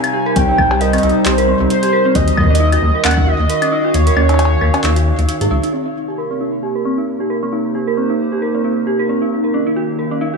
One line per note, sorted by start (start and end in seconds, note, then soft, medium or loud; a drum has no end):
0.00 2.15 C3 medium
0.00 2.15 G3 medium
0.00 3.24 D#4 medium
0.00 2.15 C5 medium
0.00 0.38 G#5 loud
0.00 closed hi-hat soft
0.00 claves medium
0.14 0.24 G4 medium
0.26 0.34 A#4 loud
0.36 0.52 C2 loud
0.36 0.48 C4 medium
0.36 0.82 G5 loud
0.36 kick loud
0.36 closed hi-hat medium
0.49 0.57 D#4 medium
0.58 0.98 C2 medium
0.58 kick loud
0.58 claves medium
0.71 0.79 G4 medium
0.71 cowbell medium
0.81 0.91 A#4 loud
0.81 1.27 D#5 loud
0.81 closed hi-hat medium
0.93 1.03 C4 loud
0.93 closed hi-hat soft
0.93 claves medium
0.98 closed hi-hat soft
1.03 1.12 C2 loud
1.03 1.13 D#4 medium
1.03 closed hi-hat soft
1.09 closed hi-hat soft
1.26 1.54 C2 medium
1.26 1.36 G4 medium
1.26 1.70 C5 loud
1.26 clap loud
1.26 closed hi-hat medium
1.38 1.46 A#4 loud
1.38 closed hi-hat soft
1.48 1.60 C4 loud
1.60 1.67 C2 medium
1.60 1.68 D#4 medium
1.70 2.17 C5 loud
1.70 closed hi-hat medium
1.83 1.91 G4 medium
1.83 closed hi-hat soft
1.93 2.03 A#4 loud
2.05 2.15 C4 loud
2.15 2.31 D#2 loud
2.15 5.73 D#3 medium
2.15 2.25 F#4 medium
2.15 3.06 D#5 loud
2.15 kick loud
2.15 closed hi-hat medium
2.28 closed hi-hat medium
2.38 2.77 D#2 medium
2.38 2.48 A#4 medium
2.38 kick loud
2.38 claves medium
2.41 kick medium
2.44 5.73 F#4 medium
2.44 kick medium
2.47 2.58 C#4 medium
2.47 kick medium
2.55 closed hi-hat medium
2.60 2.72 D#4 loud
2.72 2.80 F#4 medium
2.72 closed hi-hat medium
2.72 claves medium
2.82 2.91 D#2 loud
2.95 3.03 A#4 medium
2.95 6.63 F5 medium
3.05 3.33 D#2 medium
3.05 3.15 C#4 loud
3.05 3.29 F#5 loud
3.05 clap loud
3.05 closed hi-hat medium
3.05 claves soft
3.08 closed hi-hat soft
3.08 claves soft
3.11 claves medium
3.14 3.27 D#4 loud
3.14 kick medium
3.14 claves medium
3.27 3.37 F#4 medium
3.27 3.96 D#5 loud
3.40 3.46 D#2 medium
3.49 3.60 A#4 medium
3.49 closed hi-hat medium
3.62 3.70 C#4 loud
3.62 closed hi-hat soft
3.62 claves medium
3.72 3.84 D#4 loud
3.77 5.73 C#5 medium
3.84 3.92 F#4 medium
3.94 4.10 D#2 loud
3.94 5.29 C#5 loud
3.94 closed hi-hat medium
4.07 4.15 A#4 medium
4.07 closed hi-hat medium
4.17 4.56 D#2 medium
4.17 4.27 C#4 loud
4.17 claves medium
4.29 4.39 D#4 medium
4.29 closed hi-hat soft
4.29 cowbell soft
4.34 cowbell soft
4.39 4.49 F#4 medium
4.39 closed hi-hat medium
4.39 cowbell medium
4.45 cowbell medium
4.61 4.70 D#2 loud
4.61 4.72 A#4 medium
4.61 claves medium
4.74 4.82 C#4 medium
4.74 closed hi-hat soft
4.74 cowbell medium
4.74 claves soft
4.84 5.12 D#2 medium
4.84 4.96 D#4 loud
4.84 clap loud
4.84 closed hi-hat medium
4.96 5.04 F#4 medium
4.96 closed hi-hat medium
5.19 5.25 D#2 medium
5.19 5.24 D#4 medium
5.19 closed hi-hat soft
5.29 5.40 D#4 medium
5.29 closed hi-hat medium
5.41 5.48 G#2 medium
5.41 5.46 G#4 medium
5.41 closed hi-hat medium
5.51 5.59 C#2 loud
5.51 5.61 D#4 loud
5.63 5.71 D#4 medium
5.63 closed hi-hat soft
5.73 9.32 C3 medium
5.73 5.85 C4 medium
5.86 5.94 D#4 medium
6.02 10.37 A#3 medium
6.08 6.16 G4 medium
6.18 6.28 A#4 medium
6.31 6.40 C4 medium
6.41 6.51 D#4 medium
6.58 9.89 D#4 medium
6.63 6.73 G4 medium
6.75 6.83 A#4 medium
6.85 6.97 C4 medium
6.98 7.06 D#4 medium
7.20 7.28 G4 medium
7.30 7.40 A#4 medium
7.35 9.32 G4 medium
7.35 9.32 C5 medium
7.43 7.52 C4 medium
7.52 7.63 D#4 medium
7.75 7.85 G4 medium
7.87 7.95 A#4 medium
7.97 8.09 C4 medium
8.10 8.18 D#4 medium
8.32 8.40 G4 medium
8.42 8.52 A#4 loud
8.55 8.64 C4 medium
8.64 8.75 D#4 medium
8.87 8.97 G4 medium
8.99 9.07 A#4 medium
9.09 9.21 C4 medium
9.22 9.30 D#4 medium
9.32 10.37 D#3 medium
9.44 9.52 A#4 medium
9.54 9.64 C#4 medium
9.59 10.37 C#5 medium
9.66 9.76 D#4 medium
9.66 10.37 F5 medium
9.76 9.87 F#4 medium
9.98 10.37 F#4 medium
9.98 10.09 A#4 medium
10.11 10.19 C#4 medium
10.21 10.33 D#4 loud
10.34 10.37 F#4 medium